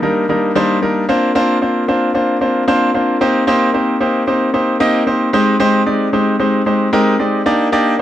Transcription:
grand piano
0.02 G3 A#3 D4 D#4 A#4
0.29 G3 A#3 D4 D#4 A#4
0.56 G3 A#3 D4 D#4 C5
0.82 G3 A#3 D4 D#4 A#4
1.09 A#3 C4 D4 F4 C5
1.35 A#3 C4 D4 F4 C5
1.62 A#3 C4 D4 F4 C5
1.88 A#3 C4 D4 F4 C5
2.14 A#3 C4 D4 F4 C5
2.41 A#3 C4 D4 F4 C5
2.68 A#3 C4 D4 F4 C5
2.94 A#3 C4 D4 F4 C5
3.21 A#3 C4 D#4 G4 C5
3.47 A#3 C4 D#4 G4 C5
3.74 A#3 C4 D#4 G4 C5
4.00 A#3 C4 D#4 G4 C5
4.27 A#3 C4 D#4 G4 C5
4.54 A#3 C4 D#4 G4 C5
4.80 A#3 C4 D#4 G4 D#5
5.07 A#3 C4 D#4 G4 C5
5.33 G#3 C4 D#4 G4 C5
5.60 G#3 C4 D#4 G4 C5
5.86 G#3 C4 D#4 G4 D5
6.13 G#3 C4 D#4 G4 C5
6.39 G#3 C4 D#4 G4 C5
6.66 G#3 C4 D#4 G4 C5
6.93 G#3 C4 D#4 G4 A#4 D#5
7.19 G#3 C4 D#4 G4 D5
7.46 A#3 D4 D#4 G4 D5
7.72 A#3 D4 D#4 G4 D5

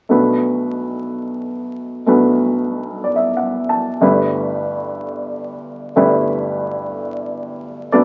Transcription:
grand piano
0.09 B1 B2 A3 D4 F#4 B4
2.06 B1 B2 A3 D4 F#4 B4
3.04 D5
3.16 E5
3.37 F#5
3.69 A5
4.01 G1 G2 A3 E4 G4 B4
5.96 G1 G2 A3 E4 G4 B4
7.92 B1 B2 A3 D4 F#4 A4 B4 D5

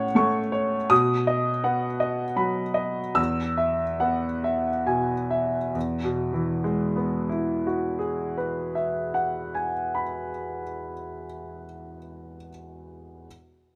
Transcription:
grand piano
Already playing: A2 C#4 C#5 F#5 C#6
0.15 A3 C#6
0.52 C#5
0.90 B2 D#6
1.27 D#5
1.64 B3 F#5
2.00 D#5
2.36 F#3 B5
2.74 D#5
3.15 E2 E6
3.57 E5
4.00 B3 F#5
4.44 E5
4.87 B2 G#5
5.31 E5
5.75 E2
6.04 B2
6.33 E3
6.64 G#3
6.96 B3
7.29 E4
7.67 F#4
7.99 G#4
8.38 B4
8.75 E5
9.14 F#5
9.55 G#5
9.95 B5

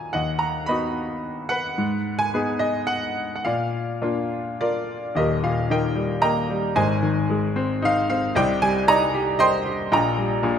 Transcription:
grand piano
Already playing: D#2 F#3 D#4 F4 A#4 F#5 G#5 A#5
0.13 D#2 D#5 F#5
0.39 A#5
0.66 B3 D#4 F#4 D#5 B5
1.49 B4 F#5
1.78 G#2
2.19 G#5
2.34 B3 D#4 G#4
2.59 D#5
2.87 F#5
3.36 F#5
3.45 A#2 D5 F5
4.02 A#3 D4 F4
4.61 F4 A#4 D5
5.15 D#1 D#2 G4 A#4 D#5
5.43 A#2 F5
5.70 D#3 A#4 D#5 G5
5.95 G3
6.22 A#3 D#5 G5 A#5
6.50 G3
6.75 G#1 G#2 C5 D#5 G#5
7.02 D#3
7.30 G#3
7.56 C4
7.82 D#4 F5
8.09 C4 F5
8.35 C2 C3 D5 D#5 G5
8.62 G3 G#5
8.88 D#4 D5 D#5 A#5
9.14 G4
9.39 C5 D#5 G5 C6
9.66 G4
9.92 A#1 A#2 D#5 G5 A#5
10.18 G3
10.43 A#1 A#2

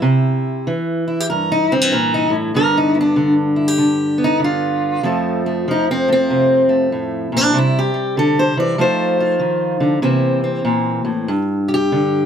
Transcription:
steel-string acoustic guitar
Already playing: E4
0.02 C3
0.67 E3
1.08 E4
1.20 G4
1.30 G2 A#4
1.52 D#4
1.71 D3 C4
1.81 E3
1.92 A#2 A#4
2.14 D#4
2.30 A2
2.54 G2 D3 B3 A#4
2.77 D#4
2.95 B3
3.01 D4
3.16 D3
3.56 E4
3.68 G4
3.78 D3
4.18 B3
4.24 D#4
4.40 D3
4.44 F4
5.03 F2 F3 A3
5.46 A3
5.68 F3 D#4
5.91 C4
6.08 A3
6.13 C4
6.30 C3
6.69 A3
6.92 A2
7.32 A#2
7.37 D4
7.53 C3 G3
7.58 E4
7.79 G4
7.94 G3
8.17 D3 A4
8.39 C5
8.57 E3 D5
8.78 F3 A3 D#4 F4 C5
9.20 F4
9.39 D#3
9.80 D3
10.02 C3 E3 A#3 C4
10.44 C4
10.65 A#2
11.05 A2
11.28 G2
11.68 G4
11.74 G4
11.92 D3

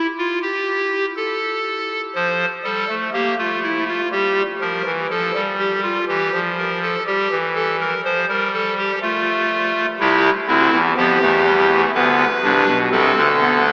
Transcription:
pipe organ
0.18 F4
0.42 G4
1.16 A4
2.15 F3 C5
2.64 G3 A4
2.89 A3
3.13 A#3 G4
3.38 A3 F4
3.63 E4
3.87 F4
4.12 G3 G4
4.61 F3 A#4
4.86 E3
5.10 F3 A4
5.34 G3
5.59 G4
5.83 F4
6.08 E3 G4
6.33 F3
6.58 A#4
6.82 A4
7.07 G3 G4
7.31 E3
7.55 A4
7.80 A#4
8.05 F3 C5
8.29 G3 A#4
8.53 A4
8.78 G4
9.02 A3 F4
10.00 C2 C3 E4 G4
10.48 D2 D3 C4 E4
10.73 E2 E3
10.97 F2 F3 B3 G4
11.22 E2 E3 A3
11.46 G3
11.70 A3
11.94 D2 D3 B3 B4
12.43 C2 C3 D4
12.67 B1 B2
12.91 C2 C3 C4 A4
13.16 D2 D3
13.41 B3
13.65 A3

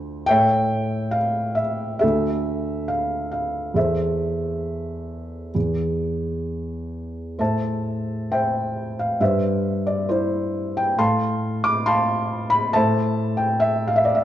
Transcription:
felt piano
Already playing: D2 F4 A4 C5
0.26 A2 C#5 E5 G5
1.11 F5
1.55 E5
1.99 D2 A4 E5
2.88 F5
3.32 F5
3.74 E2 A4 C5 E5
5.55 E2
7.39 A2 C5 E5 A5
8.32 C5 E5 G5
8.99 F5
9.20 G2 B4 C5 E5
9.87 D5
10.09 E4 C5
10.77 G5
10.98 A2 F5 A5 C6
11.64 D6
11.86 F5 A5 C6
12.50 B5
12.73 A2 C5 E5 A5
13.37 G5
13.60 E5
13.88 F5
13.96 E5
14.05 D5
14.15 E5

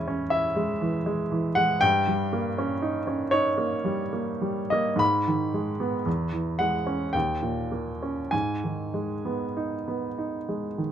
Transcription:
grand piano
Already playing: E2 E3 G#3 C#4 E4 G#5
0.08 C#4
0.30 E4 E5
0.56 G#3
0.81 E3
1.06 G#3
1.32 E3
1.55 G#3 F#5
1.81 G2 G5
2.08 G3
2.33 A#3
2.58 C#4
2.82 D#4
3.07 C#4
3.31 D#4 C#5
3.58 A#3
3.85 G3
4.13 A#3
4.41 G3
4.70 A#3 D#5
4.96 G#2 B5
5.28 D#3
5.54 G#3
5.80 B3
6.06 E2
6.32 E3
6.59 G#3 F#5
6.87 C#4
7.13 D#2 G5
7.42 A#2
7.72 A#3
8.03 C#4
8.31 G#2 G#5
8.64 D#3
8.94 G#3
9.25 B3
9.57 D#4
9.88 B3
10.18 D#4
10.49 G#3
10.78 D#3

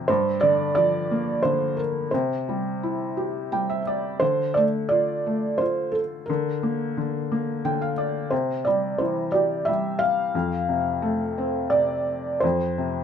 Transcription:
felt piano
Already playing: F2 C3 D3 F3
0.08 G2 C5
0.41 D3 D5
0.75 F3 D5
1.11 A#3
1.43 D3 C5
1.77 A#4
2.11 C3 C5
2.49 G3
2.83 E4
3.17 G4
3.52 G3 G5
3.70 E5
3.87 D5
4.20 D3 C5
4.54 A3 D5
4.89 F4 D5
5.26 A3
5.58 F4 C5
5.92 A4
6.26 D3 A#4
6.63 A#3
6.97 D3
7.31 A#3
7.65 D3 G5
7.82 F5
7.98 D5
8.30 C3 C5
8.65 G3 D5
8.98 E3 C5
9.32 G4 D5
9.65 G3 E5
9.99 F5
10.35 F2
10.69 C3
11.02 A3
11.38 C4
11.70 C3 D5
12.40 F2 C5
12.78 C3

